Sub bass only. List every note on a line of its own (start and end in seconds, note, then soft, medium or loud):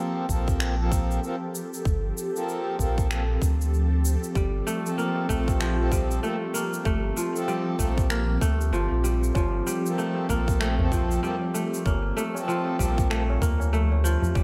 0.29 1.19 A#1 medium
1.85 2.12 G1 medium
2.79 3.38 A#1 medium
3.42 4.17 D2 medium
4.36 4.62 G1 loud
5.29 6.19 A#1 medium
6.85 7.12 G1 medium
7.79 8.38 A#1 medium
8.41 8.72 D2 medium
8.73 8.88 G1 medium
8.91 9.31 A#1 medium
9.35 9.62 G1 loud
10.29 11.19 A#1 medium
11.86 12.12 G1 loud
12.80 13.38 A#1 medium
13.42 14.17 D2 medium
14.35 14.44 G1 medium